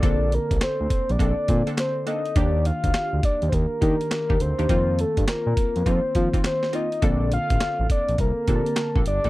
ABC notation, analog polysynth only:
X:1
M:4/4
L:1/16
Q:"Swing 16ths" 1/4=103
K:Bb
V:1 name="Analog polysynth"
[B,CDA]2 z6 [B,CDA] z2 [B,CDA] z2 [B,CDA] z | [B,DEG]2 z8 [B,DEG] z2 [B,DEG] z [B,DEG] | [B,CEF]2 z6 [B,CEF] z2 [B,CEF] z2 [B,CEF] z | [B,CDA]2 z8 [B,CDA] z2 [B,CDA] z [B,CDA] |]